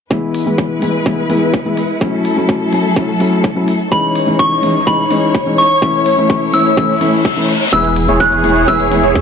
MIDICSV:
0, 0, Header, 1, 8, 480
1, 0, Start_track
1, 0, Key_signature, 4, "major"
1, 0, Tempo, 476190
1, 108, Time_signature, 4, 2, 24, 8
1, 9288, End_track
2, 0, Start_track
2, 0, Title_t, "Synth bell"
2, 0, Program_c, 0, 98
2, 3948, Note_on_c, 0, 83, 94
2, 4395, Note_off_c, 0, 83, 0
2, 4427, Note_on_c, 0, 85, 103
2, 4874, Note_off_c, 0, 85, 0
2, 4907, Note_on_c, 0, 83, 86
2, 5354, Note_off_c, 0, 83, 0
2, 5628, Note_on_c, 0, 85, 84
2, 6588, Note_on_c, 0, 88, 108
2, 6617, Note_off_c, 0, 85, 0
2, 7508, Note_off_c, 0, 88, 0
2, 7789, Note_on_c, 0, 88, 95
2, 8235, Note_off_c, 0, 88, 0
2, 8268, Note_on_c, 0, 90, 105
2, 8748, Note_on_c, 0, 88, 87
2, 8762, Note_off_c, 0, 90, 0
2, 9195, Note_off_c, 0, 88, 0
2, 9288, End_track
3, 0, Start_track
3, 0, Title_t, "Supersaw synth"
3, 0, Program_c, 1, 81
3, 7788, Note_on_c, 1, 64, 85
3, 7788, Note_on_c, 1, 68, 79
3, 7788, Note_on_c, 1, 71, 94
3, 7944, Note_off_c, 1, 64, 0
3, 7944, Note_off_c, 1, 68, 0
3, 7944, Note_off_c, 1, 71, 0
3, 8148, Note_on_c, 1, 64, 86
3, 8148, Note_on_c, 1, 68, 78
3, 8148, Note_on_c, 1, 73, 91
3, 8359, Note_off_c, 1, 64, 0
3, 8359, Note_off_c, 1, 68, 0
3, 8359, Note_off_c, 1, 73, 0
3, 8388, Note_on_c, 1, 64, 76
3, 8388, Note_on_c, 1, 68, 71
3, 8388, Note_on_c, 1, 73, 86
3, 8490, Note_off_c, 1, 64, 0
3, 8490, Note_off_c, 1, 68, 0
3, 8490, Note_off_c, 1, 73, 0
3, 8508, Note_on_c, 1, 64, 96
3, 8508, Note_on_c, 1, 68, 89
3, 8508, Note_on_c, 1, 73, 102
3, 8719, Note_off_c, 1, 64, 0
3, 8719, Note_off_c, 1, 68, 0
3, 8719, Note_off_c, 1, 73, 0
3, 8748, Note_on_c, 1, 64, 92
3, 8748, Note_on_c, 1, 68, 85
3, 8748, Note_on_c, 1, 71, 106
3, 8839, Note_off_c, 1, 64, 0
3, 8839, Note_off_c, 1, 68, 0
3, 8839, Note_off_c, 1, 71, 0
3, 8867, Note_on_c, 1, 64, 76
3, 8867, Note_on_c, 1, 68, 70
3, 8867, Note_on_c, 1, 73, 86
3, 9079, Note_off_c, 1, 64, 0
3, 9079, Note_off_c, 1, 68, 0
3, 9079, Note_off_c, 1, 73, 0
3, 9108, Note_on_c, 1, 64, 96
3, 9108, Note_on_c, 1, 68, 87
3, 9108, Note_on_c, 1, 73, 105
3, 9199, Note_off_c, 1, 64, 0
3, 9199, Note_off_c, 1, 68, 0
3, 9199, Note_off_c, 1, 73, 0
3, 9228, Note_on_c, 1, 64, 96
3, 9228, Note_on_c, 1, 68, 87
3, 9228, Note_on_c, 1, 73, 105
3, 9288, Note_off_c, 1, 64, 0
3, 9288, Note_off_c, 1, 68, 0
3, 9288, Note_off_c, 1, 73, 0
3, 9288, End_track
4, 0, Start_track
4, 0, Title_t, "String section"
4, 0, Program_c, 2, 48
4, 109, Note_on_c, 2, 56, 74
4, 109, Note_on_c, 2, 64, 67
4, 109, Note_on_c, 2, 71, 81
4, 2009, Note_off_c, 2, 56, 0
4, 2009, Note_off_c, 2, 71, 0
4, 2027, Note_on_c, 2, 69, 82
4, 2028, Note_on_c, 2, 54, 72
4, 3910, Note_off_c, 2, 64, 0
4, 3929, Note_off_c, 2, 54, 0
4, 3929, Note_off_c, 2, 69, 0
4, 3948, Note_on_c, 2, 63, 68
4, 3948, Note_on_c, 2, 73, 84
4, 3949, Note_on_c, 2, 52, 74
4, 5849, Note_off_c, 2, 52, 0
4, 5849, Note_off_c, 2, 63, 0
4, 5869, Note_on_c, 2, 57, 76
4, 5869, Note_on_c, 2, 64, 72
4, 7750, Note_off_c, 2, 73, 0
4, 7769, Note_off_c, 2, 57, 0
4, 7769, Note_off_c, 2, 64, 0
4, 7788, Note_on_c, 2, 59, 68
4, 7788, Note_on_c, 2, 68, 83
4, 7789, Note_on_c, 2, 52, 77
4, 9288, Note_off_c, 2, 52, 0
4, 9288, Note_off_c, 2, 59, 0
4, 9288, Note_off_c, 2, 68, 0
4, 9288, End_track
5, 0, Start_track
5, 0, Title_t, "Felt piano"
5, 0, Program_c, 3, 0
5, 103, Note_on_c, 3, 52, 78
5, 107, Note_on_c, 3, 56, 71
5, 111, Note_on_c, 3, 59, 73
5, 115, Note_on_c, 3, 64, 87
5, 437, Note_off_c, 3, 52, 0
5, 439, Note_off_c, 3, 56, 0
5, 441, Note_off_c, 3, 59, 0
5, 443, Note_off_c, 3, 64, 0
5, 462, Note_on_c, 3, 52, 74
5, 467, Note_on_c, 3, 56, 65
5, 471, Note_on_c, 3, 59, 66
5, 474, Note_on_c, 3, 64, 80
5, 797, Note_off_c, 3, 52, 0
5, 799, Note_off_c, 3, 56, 0
5, 801, Note_off_c, 3, 59, 0
5, 803, Note_off_c, 3, 64, 0
5, 822, Note_on_c, 3, 52, 70
5, 827, Note_on_c, 3, 56, 64
5, 831, Note_on_c, 3, 59, 64
5, 835, Note_on_c, 3, 64, 75
5, 967, Note_off_c, 3, 52, 0
5, 969, Note_off_c, 3, 56, 0
5, 971, Note_off_c, 3, 59, 0
5, 973, Note_off_c, 3, 64, 0
5, 1062, Note_on_c, 3, 52, 80
5, 1067, Note_on_c, 3, 56, 74
5, 1071, Note_on_c, 3, 59, 73
5, 1075, Note_on_c, 3, 64, 90
5, 1207, Note_off_c, 3, 52, 0
5, 1209, Note_off_c, 3, 56, 0
5, 1211, Note_off_c, 3, 59, 0
5, 1213, Note_off_c, 3, 64, 0
5, 1303, Note_on_c, 3, 52, 82
5, 1307, Note_on_c, 3, 56, 76
5, 1311, Note_on_c, 3, 59, 74
5, 1315, Note_on_c, 3, 64, 92
5, 1531, Note_off_c, 3, 52, 0
5, 1533, Note_off_c, 3, 56, 0
5, 1535, Note_off_c, 3, 59, 0
5, 1538, Note_off_c, 3, 64, 0
5, 1663, Note_on_c, 3, 52, 68
5, 1667, Note_on_c, 3, 56, 63
5, 1671, Note_on_c, 3, 59, 64
5, 1675, Note_on_c, 3, 64, 75
5, 1807, Note_off_c, 3, 52, 0
5, 1809, Note_off_c, 3, 56, 0
5, 1811, Note_off_c, 3, 59, 0
5, 1813, Note_off_c, 3, 64, 0
5, 2022, Note_on_c, 3, 54, 78
5, 2026, Note_on_c, 3, 57, 73
5, 2030, Note_on_c, 3, 61, 74
5, 2035, Note_on_c, 3, 64, 86
5, 2356, Note_off_c, 3, 54, 0
5, 2358, Note_off_c, 3, 57, 0
5, 2360, Note_off_c, 3, 61, 0
5, 2363, Note_off_c, 3, 64, 0
5, 2382, Note_on_c, 3, 54, 73
5, 2386, Note_on_c, 3, 57, 68
5, 2390, Note_on_c, 3, 61, 65
5, 2394, Note_on_c, 3, 64, 80
5, 2716, Note_off_c, 3, 54, 0
5, 2718, Note_off_c, 3, 57, 0
5, 2720, Note_off_c, 3, 61, 0
5, 2722, Note_off_c, 3, 64, 0
5, 2743, Note_on_c, 3, 54, 70
5, 2747, Note_on_c, 3, 57, 65
5, 2751, Note_on_c, 3, 61, 63
5, 2755, Note_on_c, 3, 64, 79
5, 2887, Note_off_c, 3, 54, 0
5, 2889, Note_off_c, 3, 57, 0
5, 2891, Note_off_c, 3, 61, 0
5, 2893, Note_off_c, 3, 64, 0
5, 2983, Note_on_c, 3, 54, 83
5, 2987, Note_on_c, 3, 57, 74
5, 2991, Note_on_c, 3, 61, 72
5, 2995, Note_on_c, 3, 64, 89
5, 3127, Note_off_c, 3, 54, 0
5, 3129, Note_off_c, 3, 57, 0
5, 3131, Note_off_c, 3, 61, 0
5, 3133, Note_off_c, 3, 64, 0
5, 3222, Note_on_c, 3, 54, 84
5, 3227, Note_on_c, 3, 57, 77
5, 3231, Note_on_c, 3, 61, 75
5, 3235, Note_on_c, 3, 64, 91
5, 3451, Note_off_c, 3, 54, 0
5, 3453, Note_off_c, 3, 57, 0
5, 3456, Note_off_c, 3, 61, 0
5, 3457, Note_off_c, 3, 64, 0
5, 3582, Note_on_c, 3, 54, 69
5, 3586, Note_on_c, 3, 57, 64
5, 3590, Note_on_c, 3, 61, 63
5, 3594, Note_on_c, 3, 64, 77
5, 3726, Note_off_c, 3, 54, 0
5, 3728, Note_off_c, 3, 57, 0
5, 3731, Note_off_c, 3, 61, 0
5, 3733, Note_off_c, 3, 64, 0
5, 3942, Note_on_c, 3, 52, 78
5, 3946, Note_on_c, 3, 56, 76
5, 3950, Note_on_c, 3, 61, 72
5, 3954, Note_on_c, 3, 63, 88
5, 4276, Note_off_c, 3, 52, 0
5, 4278, Note_off_c, 3, 56, 0
5, 4280, Note_off_c, 3, 61, 0
5, 4282, Note_off_c, 3, 63, 0
5, 4302, Note_on_c, 3, 52, 75
5, 4306, Note_on_c, 3, 56, 66
5, 4310, Note_on_c, 3, 61, 66
5, 4314, Note_on_c, 3, 63, 82
5, 4637, Note_off_c, 3, 52, 0
5, 4638, Note_off_c, 3, 56, 0
5, 4640, Note_off_c, 3, 61, 0
5, 4642, Note_off_c, 3, 63, 0
5, 4662, Note_on_c, 3, 52, 73
5, 4666, Note_on_c, 3, 56, 67
5, 4670, Note_on_c, 3, 61, 68
5, 4674, Note_on_c, 3, 63, 80
5, 4807, Note_off_c, 3, 52, 0
5, 4809, Note_off_c, 3, 56, 0
5, 4811, Note_off_c, 3, 61, 0
5, 4813, Note_off_c, 3, 63, 0
5, 4903, Note_on_c, 3, 52, 84
5, 4907, Note_on_c, 3, 56, 75
5, 4911, Note_on_c, 3, 61, 75
5, 4915, Note_on_c, 3, 63, 91
5, 5047, Note_off_c, 3, 52, 0
5, 5049, Note_off_c, 3, 56, 0
5, 5051, Note_off_c, 3, 61, 0
5, 5053, Note_off_c, 3, 63, 0
5, 5142, Note_on_c, 3, 52, 84
5, 5146, Note_on_c, 3, 56, 78
5, 5150, Note_on_c, 3, 61, 75
5, 5154, Note_on_c, 3, 63, 93
5, 5371, Note_off_c, 3, 52, 0
5, 5373, Note_off_c, 3, 56, 0
5, 5375, Note_off_c, 3, 61, 0
5, 5377, Note_off_c, 3, 63, 0
5, 5502, Note_on_c, 3, 52, 71
5, 5506, Note_on_c, 3, 56, 63
5, 5511, Note_on_c, 3, 61, 65
5, 5514, Note_on_c, 3, 63, 78
5, 5647, Note_off_c, 3, 52, 0
5, 5649, Note_off_c, 3, 56, 0
5, 5651, Note_off_c, 3, 61, 0
5, 5653, Note_off_c, 3, 63, 0
5, 5862, Note_on_c, 3, 52, 81
5, 5866, Note_on_c, 3, 57, 75
5, 5870, Note_on_c, 3, 61, 74
5, 5874, Note_on_c, 3, 64, 91
5, 6196, Note_off_c, 3, 52, 0
5, 6199, Note_off_c, 3, 57, 0
5, 6201, Note_off_c, 3, 61, 0
5, 6203, Note_off_c, 3, 64, 0
5, 6222, Note_on_c, 3, 52, 73
5, 6226, Note_on_c, 3, 57, 68
5, 6230, Note_on_c, 3, 61, 69
5, 6234, Note_on_c, 3, 64, 81
5, 6556, Note_off_c, 3, 52, 0
5, 6558, Note_off_c, 3, 57, 0
5, 6560, Note_off_c, 3, 61, 0
5, 6562, Note_off_c, 3, 64, 0
5, 6582, Note_on_c, 3, 52, 74
5, 6586, Note_on_c, 3, 57, 66
5, 6591, Note_on_c, 3, 61, 66
5, 6594, Note_on_c, 3, 64, 78
5, 6727, Note_off_c, 3, 52, 0
5, 6729, Note_off_c, 3, 57, 0
5, 6731, Note_off_c, 3, 61, 0
5, 6733, Note_off_c, 3, 64, 0
5, 6822, Note_on_c, 3, 52, 85
5, 6826, Note_on_c, 3, 57, 78
5, 6831, Note_on_c, 3, 61, 77
5, 6835, Note_on_c, 3, 64, 88
5, 6967, Note_off_c, 3, 52, 0
5, 6969, Note_off_c, 3, 57, 0
5, 6971, Note_off_c, 3, 61, 0
5, 6973, Note_off_c, 3, 64, 0
5, 7062, Note_on_c, 3, 52, 85
5, 7066, Note_on_c, 3, 57, 78
5, 7071, Note_on_c, 3, 61, 77
5, 7075, Note_on_c, 3, 64, 94
5, 7291, Note_off_c, 3, 52, 0
5, 7293, Note_off_c, 3, 57, 0
5, 7295, Note_off_c, 3, 61, 0
5, 7298, Note_off_c, 3, 64, 0
5, 7422, Note_on_c, 3, 52, 71
5, 7426, Note_on_c, 3, 57, 66
5, 7430, Note_on_c, 3, 61, 63
5, 7434, Note_on_c, 3, 64, 79
5, 7566, Note_off_c, 3, 52, 0
5, 7568, Note_off_c, 3, 57, 0
5, 7570, Note_off_c, 3, 61, 0
5, 7573, Note_off_c, 3, 64, 0
5, 7782, Note_on_c, 3, 52, 81
5, 7786, Note_on_c, 3, 56, 77
5, 7790, Note_on_c, 3, 59, 75
5, 7794, Note_on_c, 3, 64, 90
5, 8116, Note_off_c, 3, 52, 0
5, 8118, Note_off_c, 3, 56, 0
5, 8120, Note_off_c, 3, 59, 0
5, 8122, Note_off_c, 3, 64, 0
5, 8142, Note_on_c, 3, 52, 75
5, 8146, Note_on_c, 3, 56, 68
5, 8150, Note_on_c, 3, 59, 70
5, 8154, Note_on_c, 3, 64, 82
5, 8476, Note_off_c, 3, 52, 0
5, 8478, Note_off_c, 3, 56, 0
5, 8480, Note_off_c, 3, 59, 0
5, 8482, Note_off_c, 3, 64, 0
5, 8502, Note_on_c, 3, 52, 71
5, 8506, Note_on_c, 3, 56, 66
5, 8510, Note_on_c, 3, 59, 68
5, 8514, Note_on_c, 3, 64, 80
5, 8647, Note_off_c, 3, 52, 0
5, 8648, Note_off_c, 3, 56, 0
5, 8650, Note_off_c, 3, 59, 0
5, 8652, Note_off_c, 3, 64, 0
5, 8742, Note_on_c, 3, 52, 86
5, 8746, Note_on_c, 3, 56, 77
5, 8750, Note_on_c, 3, 59, 76
5, 8754, Note_on_c, 3, 64, 93
5, 8887, Note_off_c, 3, 52, 0
5, 8889, Note_off_c, 3, 56, 0
5, 8891, Note_off_c, 3, 59, 0
5, 8893, Note_off_c, 3, 64, 0
5, 8982, Note_on_c, 3, 52, 83
5, 8986, Note_on_c, 3, 56, 78
5, 8991, Note_on_c, 3, 59, 79
5, 8994, Note_on_c, 3, 64, 93
5, 9211, Note_off_c, 3, 52, 0
5, 9213, Note_off_c, 3, 56, 0
5, 9215, Note_off_c, 3, 59, 0
5, 9217, Note_off_c, 3, 64, 0
5, 9288, End_track
6, 0, Start_track
6, 0, Title_t, "Sub bass"
6, 0, Program_c, 4, 38
6, 7788, Note_on_c, 4, 28, 95
6, 8124, Note_off_c, 4, 28, 0
6, 8148, Note_on_c, 4, 28, 92
6, 8364, Note_off_c, 4, 28, 0
6, 8388, Note_on_c, 4, 28, 96
6, 8484, Note_off_c, 4, 28, 0
6, 8508, Note_on_c, 4, 28, 96
6, 8724, Note_off_c, 4, 28, 0
6, 8748, Note_on_c, 4, 28, 89
6, 8844, Note_off_c, 4, 28, 0
6, 8868, Note_on_c, 4, 28, 94
6, 9084, Note_off_c, 4, 28, 0
6, 9108, Note_on_c, 4, 28, 94
6, 9204, Note_off_c, 4, 28, 0
6, 9228, Note_on_c, 4, 40, 94
6, 9288, Note_off_c, 4, 40, 0
6, 9288, End_track
7, 0, Start_track
7, 0, Title_t, "Reverse cymbal"
7, 0, Program_c, 5, 119
7, 6828, Note_on_c, 5, 60, 70
7, 7788, Note_off_c, 5, 60, 0
7, 9288, End_track
8, 0, Start_track
8, 0, Title_t, "Drums"
8, 108, Note_on_c, 9, 36, 107
8, 209, Note_off_c, 9, 36, 0
8, 348, Note_on_c, 9, 46, 98
8, 449, Note_off_c, 9, 46, 0
8, 588, Note_on_c, 9, 36, 107
8, 689, Note_off_c, 9, 36, 0
8, 828, Note_on_c, 9, 46, 97
8, 929, Note_off_c, 9, 46, 0
8, 1068, Note_on_c, 9, 36, 108
8, 1169, Note_off_c, 9, 36, 0
8, 1308, Note_on_c, 9, 46, 92
8, 1409, Note_off_c, 9, 46, 0
8, 1548, Note_on_c, 9, 36, 109
8, 1649, Note_off_c, 9, 36, 0
8, 1788, Note_on_c, 9, 46, 96
8, 1889, Note_off_c, 9, 46, 0
8, 2028, Note_on_c, 9, 36, 112
8, 2129, Note_off_c, 9, 36, 0
8, 2268, Note_on_c, 9, 46, 101
8, 2369, Note_off_c, 9, 46, 0
8, 2508, Note_on_c, 9, 36, 113
8, 2609, Note_off_c, 9, 36, 0
8, 2748, Note_on_c, 9, 46, 99
8, 2849, Note_off_c, 9, 46, 0
8, 2988, Note_on_c, 9, 36, 115
8, 3089, Note_off_c, 9, 36, 0
8, 3229, Note_on_c, 9, 46, 99
8, 3329, Note_off_c, 9, 46, 0
8, 3468, Note_on_c, 9, 36, 114
8, 3569, Note_off_c, 9, 36, 0
8, 3709, Note_on_c, 9, 46, 100
8, 3809, Note_off_c, 9, 46, 0
8, 3948, Note_on_c, 9, 36, 113
8, 4049, Note_off_c, 9, 36, 0
8, 4188, Note_on_c, 9, 46, 105
8, 4289, Note_off_c, 9, 46, 0
8, 4428, Note_on_c, 9, 36, 116
8, 4529, Note_off_c, 9, 36, 0
8, 4668, Note_on_c, 9, 46, 104
8, 4769, Note_off_c, 9, 46, 0
8, 4908, Note_on_c, 9, 36, 116
8, 5009, Note_off_c, 9, 36, 0
8, 5148, Note_on_c, 9, 46, 101
8, 5249, Note_off_c, 9, 46, 0
8, 5388, Note_on_c, 9, 36, 118
8, 5489, Note_off_c, 9, 36, 0
8, 5628, Note_on_c, 9, 46, 100
8, 5729, Note_off_c, 9, 46, 0
8, 5868, Note_on_c, 9, 36, 112
8, 5969, Note_off_c, 9, 36, 0
8, 6108, Note_on_c, 9, 46, 104
8, 6209, Note_off_c, 9, 46, 0
8, 6348, Note_on_c, 9, 36, 116
8, 6449, Note_off_c, 9, 36, 0
8, 6588, Note_on_c, 9, 46, 104
8, 6688, Note_off_c, 9, 46, 0
8, 6828, Note_on_c, 9, 36, 118
8, 6929, Note_off_c, 9, 36, 0
8, 7068, Note_on_c, 9, 46, 97
8, 7169, Note_off_c, 9, 46, 0
8, 7308, Note_on_c, 9, 36, 116
8, 7409, Note_off_c, 9, 36, 0
8, 7548, Note_on_c, 9, 46, 101
8, 7649, Note_off_c, 9, 46, 0
8, 7788, Note_on_c, 9, 36, 107
8, 7788, Note_on_c, 9, 42, 62
8, 7888, Note_off_c, 9, 42, 0
8, 7889, Note_off_c, 9, 36, 0
8, 7908, Note_on_c, 9, 42, 38
8, 8009, Note_off_c, 9, 42, 0
8, 8028, Note_on_c, 9, 46, 105
8, 8129, Note_off_c, 9, 46, 0
8, 8148, Note_on_c, 9, 42, 40
8, 8248, Note_off_c, 9, 42, 0
8, 8268, Note_on_c, 9, 36, 117
8, 8268, Note_on_c, 9, 42, 64
8, 8369, Note_off_c, 9, 36, 0
8, 8369, Note_off_c, 9, 42, 0
8, 8388, Note_on_c, 9, 42, 40
8, 8489, Note_off_c, 9, 42, 0
8, 8508, Note_on_c, 9, 46, 98
8, 8609, Note_off_c, 9, 46, 0
8, 8628, Note_on_c, 9, 42, 39
8, 8729, Note_off_c, 9, 42, 0
8, 8748, Note_on_c, 9, 36, 113
8, 8748, Note_on_c, 9, 42, 68
8, 8849, Note_off_c, 9, 36, 0
8, 8849, Note_off_c, 9, 42, 0
8, 8868, Note_on_c, 9, 42, 41
8, 8969, Note_off_c, 9, 42, 0
8, 8988, Note_on_c, 9, 46, 100
8, 9088, Note_off_c, 9, 46, 0
8, 9108, Note_on_c, 9, 42, 39
8, 9209, Note_off_c, 9, 42, 0
8, 9228, Note_on_c, 9, 36, 111
8, 9228, Note_on_c, 9, 42, 65
8, 9288, Note_off_c, 9, 36, 0
8, 9288, Note_off_c, 9, 42, 0
8, 9288, End_track
0, 0, End_of_file